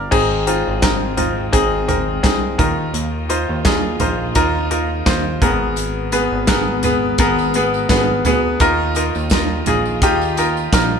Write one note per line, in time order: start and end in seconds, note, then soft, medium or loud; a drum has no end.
0.00 0.11 C4 medium
0.00 0.14 D4 medium
0.00 0.30 A#4 medium
0.00 0.14 D5 medium
0.00 0.14 F5 medium
0.00 0.14 G5 medium
0.11 0.63 G#1 medium
0.11 1.14 G#2 medium
0.11 5.38 D#3 medium
0.11 2.57 G#3 medium
0.11 0.44 C4 medium
0.11 2.57 C4 medium
0.11 0.44 D#4 medium
0.11 0.45 G#4 loud
0.11 kick medium
0.11 crash medium
0.47 0.80 C4 medium
0.47 0.80 D#4 medium
0.47 0.80 F4 medium
0.47 closed hi-hat medium
0.68 1.50 G#1 medium
0.82 1.15 C4 medium
0.82 1.15 D#4 medium
0.82 1.15 A#4 medium
0.82 kick medium
0.82 snare medium
0.82 clap medium
0.82 closed hi-hat medium
1.17 1.50 C4 medium
1.17 1.51 D#4 medium
1.17 1.50 F4 medium
1.17 closed hi-hat medium
1.17 floor tom medium
1.52 2.20 G#1 medium
1.52 1.86 C4 medium
1.52 1.86 D#4 medium
1.52 1.86 G#4 loud
1.52 kick loud
1.52 closed hi-hat medium
1.88 2.21 C4 medium
1.88 2.21 D#4 medium
1.88 2.21 A#4 medium
1.88 closed hi-hat medium
1.88 floor tom medium
2.23 2.57 C2 medium
2.23 2.56 C4 medium
2.23 2.56 D#4 medium
2.23 2.56 G#4 medium
2.23 kick medium
2.23 snare medium
2.23 clap medium
2.23 closed hi-hat medium
2.58 2.92 D#2 medium
2.58 3.61 D#3 medium
2.58 5.39 A#3 medium
2.58 3.25 D#4 medium
2.58 3.25 F4 medium
2.58 5.39 F4 medium
2.58 3.25 A#4 medium
2.58 kick medium
2.58 closed hi-hat medium
2.58 floor tom medium
2.94 3.45 D#2 medium
2.94 closed hi-hat medium
3.29 3.62 D#4 medium
3.29 3.63 F4 medium
3.29 3.63 C5 medium
3.29 closed hi-hat medium
3.49 3.97 D#2 medium
3.65 3.98 D#4 medium
3.65 3.98 F4 medium
3.65 3.98 G#4 medium
3.65 kick loud
3.65 snare loud
3.65 clap medium
3.65 closed hi-hat medium
4.00 4.33 A#1 medium
4.00 4.33 D#4 medium
4.00 4.33 F4 medium
4.00 4.33 C5 medium
4.00 closed hi-hat medium
4.00 floor tom medium
4.35 5.02 D#2 medium
4.35 4.69 D#4 medium
4.35 4.69 F4 medium
4.35 4.69 A#4 loud
4.35 kick loud
4.35 closed hi-hat medium
4.71 5.04 D#4 medium
4.71 5.04 F4 medium
4.71 5.04 A#4 medium
4.71 closed hi-hat medium
5.06 5.39 D#2 medium
5.06 5.39 D#4 medium
5.06 5.39 F4 medium
5.06 5.39 C5 medium
5.06 kick loud
5.06 snare medium
5.06 clap medium
5.06 closed hi-hat medium
5.41 6.28 G#1 medium
5.41 6.44 G#2 medium
5.41 8.57 G#3 medium
5.41 8.57 B3 medium
5.41 6.08 B3 medium
5.41 6.08 G#4 medium
5.41 6.08 A#4 medium
5.41 kick loud
5.41 closed hi-hat medium
5.41 floor tom medium
5.76 closed hi-hat medium
5.76 tambourine soft
6.12 6.45 B3 medium
6.12 6.46 G#4 medium
6.12 6.46 B4 medium
6.12 closed hi-hat medium
6.12 tambourine soft
6.32 7.14 G#1 medium
6.47 6.81 B3 medium
6.47 6.81 G#4 medium
6.47 6.81 A#4 medium
6.47 kick loud
6.47 snare loud
6.47 clap medium
6.47 closed hi-hat medium
6.47 tambourine medium
6.83 7.17 B3 medium
6.83 7.17 G#4 medium
6.83 7.17 B4 medium
6.83 closed hi-hat medium
6.83 floor tom medium
6.83 tambourine soft
7.18 7.85 G#1 medium
7.18 7.52 B3 loud
7.18 7.52 G#4 medium
7.18 7.52 A#4 loud
7.18 kick loud
7.18 closed hi-hat medium
7.39 tambourine soft
7.54 7.88 B3 medium
7.54 7.88 G#4 medium
7.54 7.88 B4 medium
7.54 closed hi-hat medium
7.54 tambourine medium
7.74 tambourine soft
7.89 8.22 G#1 medium
7.89 8.23 B3 medium
7.89 8.23 G#4 medium
7.89 8.23 B4 medium
7.89 kick loud
7.89 snare loud
7.89 clap medium
7.89 closed hi-hat medium
7.89 tambourine medium
8.25 8.58 D2 medium
8.25 8.58 B3 medium
8.25 8.58 G#4 medium
8.25 8.58 B4 medium
8.25 closed hi-hat medium
8.25 floor tom medium
8.25 tambourine medium
8.60 9.11 D#2 loud
8.60 11.00 D#3 medium
8.60 9.63 D#3 medium
8.60 8.93 D#4 loud
8.60 11.00 F4 medium
8.60 8.93 F4 loud
8.60 8.94 A#4 loud
8.60 kick loud
8.60 closed hi-hat medium
8.60 tambourine soft
8.95 9.29 D#4 medium
8.95 9.29 F4 medium
8.95 9.29 A#4 medium
8.95 closed hi-hat medium
8.95 tambourine soft
9.15 9.63 D#2 medium
9.15 tambourine soft
9.30 9.64 D#4 medium
9.30 9.64 F4 medium
9.30 9.64 A#4 medium
9.30 kick medium
9.30 snare loud
9.30 clap medium
9.30 closed hi-hat medium
9.30 tambourine medium
9.66 10.03 A#1 medium
9.66 10.00 D#4 medium
9.66 10.00 F4 medium
9.66 10.00 G#4 medium
9.66 closed hi-hat medium
9.66 floor tom medium
9.66 tambourine soft
9.86 tambourine soft
10.02 10.68 D#2 loud
10.02 10.35 D#4 loud
10.02 10.35 F4 medium
10.02 10.35 G4 loud
10.02 kick loud
10.02 closed hi-hat loud
10.21 tambourine soft
10.37 10.70 D#4 medium
10.37 10.70 F4 medium
10.37 10.71 A#4 medium
10.37 closed hi-hat medium
10.37 tambourine soft
10.57 tambourine soft
10.73 11.00 A#1 medium
10.73 11.00 D#4 medium
10.73 11.00 F4 medium
10.73 11.00 A#4 medium
10.73 kick loud
10.73 snare medium
10.73 clap medium
10.73 closed hi-hat medium
10.73 tambourine medium